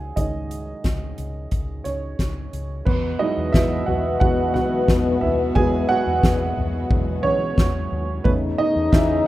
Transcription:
0.00 0.11 C#2 medium
0.00 0.17 D#3 soft
0.00 0.17 G#3 soft
0.00 0.18 C#4 soft
0.00 2.88 E4 medium
0.00 2.88 F#4 medium
0.00 0.13 G#4 medium
0.00 2.89 E5 medium
0.00 2.88 F#5 medium
0.00 0.18 G#5 medium
0.16 0.72 C#2 medium
0.16 0.62 D#3 soft
0.16 0.62 G#3 soft
0.16 0.62 C#4 soft
0.16 2.16 D#4 medium
0.16 2.15 D#5 medium
0.16 kick medium
0.16 closed hi-hat medium
0.51 closed hi-hat medium
0.84 1.12 C#2 medium
0.84 kick loud
0.84 snare medium
0.84 closed hi-hat medium
1.18 1.46 C#2 medium
1.18 closed hi-hat medium
1.51 1.79 C#2 medium
1.51 kick medium
1.51 closed hi-hat medium
1.84 2.13 C#2 medium
1.84 2.83 C#4 medium
1.84 2.82 C#5 medium
1.84 snare soft
1.84 closed hi-hat medium
2.19 2.47 C#2 medium
2.19 kick medium
2.19 snare medium
2.19 closed hi-hat medium
2.53 2.81 C#2 medium
2.53 closed hi-hat medium
2.85 3.14 E2 loud
2.85 7.87 B2 medium
2.85 9.27 B2 medium
2.85 8.21 F#3 medium
2.85 8.21 G#3 medium
2.85 7.87 B3 medium
2.85 8.21 B3 medium
2.85 3.18 B3 medium
2.85 8.21 F#4 medium
2.85 3.21 B4 medium
2.85 kick loud
2.85 crash medium
3.19 4.17 F#3 medium
3.19 4.17 G#3 medium
3.19 3.52 D#4 medium
3.19 3.53 E4 medium
3.19 3.54 D#5 medium
3.19 ride soft
3.37 3.51 E2 medium
3.52 3.82 E2 loud
3.52 3.85 E4 medium
3.52 3.88 E5 loud
3.52 kick loud
3.52 snare loud
3.52 ride medium
3.86 4.15 E2 loud
3.86 4.19 F#4 medium
3.86 4.19 F#5 medium
3.86 floor tom medium
3.86 ride medium
4.20 4.57 E2 loud
4.20 4.51 F#3 soft
4.20 4.51 G#3 soft
4.20 4.51 E4 medium
4.20 4.53 F#4 medium
4.20 4.52 F#5 loud
4.20 kick loud
4.20 ride medium
4.54 4.83 E3 medium
4.54 5.18 F#4 medium
4.54 5.24 F#5 medium
4.54 snare soft
4.54 floor tom medium
4.54 ride medium
4.88 5.16 E2 loud
4.88 kick loud
4.88 snare medium
4.88 ride medium
5.21 5.50 D#2 medium
5.21 5.54 E4 medium
5.21 5.56 E5 medium
5.21 floor tom medium
5.21 ride medium
5.55 5.83 E2 loud
5.55 6.00 F#3 medium
5.55 6.01 G#3 medium
5.55 6.01 E4 medium
5.55 5.87 G#4 medium
5.55 5.90 G#5 loud
5.55 kick loud
5.55 ride medium
5.89 7.20 F#4 medium
5.89 7.28 F#5 loud
5.89 ride medium
6.07 6.20 E2 loud
6.23 6.51 E2 loud
6.23 kick loud
6.23 snare loud
6.23 ride medium
6.57 6.84 E2 loud
6.57 floor tom medium
6.57 ride medium
6.90 7.18 E2 loud
6.90 7.21 F#3 soft
6.90 7.21 G#3 soft
6.90 7.21 E4 soft
6.90 kick loud
6.90 ride medium
7.23 7.52 E3 loud
7.23 8.21 C#4 medium
7.23 8.21 C#5 loud
7.23 floor tom medium
7.23 ride medium
7.58 7.85 E2 medium
7.58 kick loud
7.58 snare medium
7.58 ride medium
7.92 8.19 D#2 loud
7.92 ride medium
8.24 8.53 E2 loud
8.24 9.27 C#3 medium
8.24 9.22 A3 medium
8.24 9.27 A3 medium
8.24 8.33 B3 medium
8.24 9.27 B3 medium
8.24 9.22 C#4 medium
8.24 9.27 D#4 medium
8.24 8.32 B4 loud
8.24 kick loud
8.24 ride medium
8.58 8.91 D#4 medium
8.58 8.90 D#5 loud
8.76 8.89 E2 loud
8.92 9.20 E2 loud
8.92 9.24 E3 medium
8.92 9.27 E5 loud
8.92 kick loud
8.92 snare loud

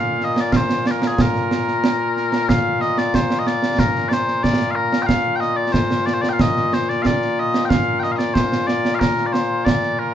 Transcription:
0.00 10.14 A#2 medium
0.00 10.14 A#3 medium
0.00 10.14 F4 medium
0.00 0.24 F5 loud
0.20 0.35 D#5 medium
0.20 snare soft
0.35 0.41 D#5 medium
0.35 snare medium
0.41 0.52 D5 medium
0.52 0.87 C5 medium
0.52 0.56 F5 medium
0.52 concert bass drum medium
0.52 snare loud
0.69 snare medium
0.86 0.91 D5 medium
0.86 snare medium
0.91 1.07 A#4 medium
1.02 snare medium
1.07 1.22 G#4 medium
1.18 2.49 A#4 medium
1.18 concert bass drum medium
1.18 snare loud
1.35 snare soft
1.51 snare medium
1.68 snare soft
1.84 snare loud
2.17 snare soft
2.32 snare medium
2.49 2.81 F5 loud
2.49 concert bass drum medium
2.49 snare loud
2.81 2.98 D#5 medium
2.81 snare soft
2.98 3.15 D5 medium
2.98 snare medium
3.14 3.39 C5 medium
3.14 concert bass drum medium
3.14 snare loud
3.30 snare medium
3.39 3.47 D#5 medium
3.47 3.79 D5 medium
3.47 snare medium
3.62 snare medium
3.79 4.08 A#4 loud
3.79 concert bass drum medium
3.79 snare loud
3.95 snare soft
4.09 4.13 D5 medium
4.09 snare medium
4.13 4.43 C5 medium
4.28 snare soft
4.43 4.71 D5 medium
4.43 concert bass drum medium
4.43 snare medium
4.60 snare soft
4.71 4.75 F5 medium
4.75 5.02 A#4 medium
4.93 snare medium
5.02 5.07 G5 loud
5.07 5.36 F5 loud
5.07 concert bass drum medium
5.07 snare loud
5.36 5.40 G5 medium
5.40 5.57 D#5 medium
5.40 snare soft
5.57 5.72 D5 medium
5.72 6.06 C5 medium
5.72 concert bass drum medium
5.72 snare loud
5.91 snare medium
6.06 6.13 D5 medium
6.06 snare medium
6.13 6.21 C5 medium
6.21 6.29 D5 loud
6.21 snare medium
6.29 6.40 F5 medium
6.29 6.33 G5 medium
6.39 6.74 D#5 loud
6.39 concert bass drum medium
6.39 snare loud
6.56 snare soft
6.73 6.89 C5 medium
6.73 snare medium
6.89 7.02 D5 medium
6.89 snare soft
7.02 7.40 D5 medium
7.02 7.06 F5 medium
7.02 concert bass drum medium
7.02 snare medium
7.22 snare soft
7.40 7.65 D#5 medium
7.54 snare medium
7.65 7.69 G5 medium
7.69 8.00 F5 loud
7.69 concert bass drum medium
7.69 snare loud
8.00 8.12 D#5 medium
8.00 8.03 G5 medium
8.00 snare soft
8.12 8.16 F5 medium
8.16 8.34 D5 medium
8.16 8.18 D#5 medium
8.16 snare medium
8.34 8.67 C5 medium
8.34 concert bass drum medium
8.34 snare loud
8.52 snare medium
8.67 8.95 D5 medium
8.67 snare medium
8.85 snare medium
8.95 8.99 F5 medium
8.99 9.26 A#4 medium
8.99 concert bass drum medium
8.99 snare loud
9.17 snare soft
9.26 9.32 D5 medium
9.32 9.65 C5 medium
9.32 snare medium
9.65 9.99 D5 medium
9.65 concert bass drum medium
9.65 snare loud
9.83 snare soft
9.99 10.14 A#4 medium

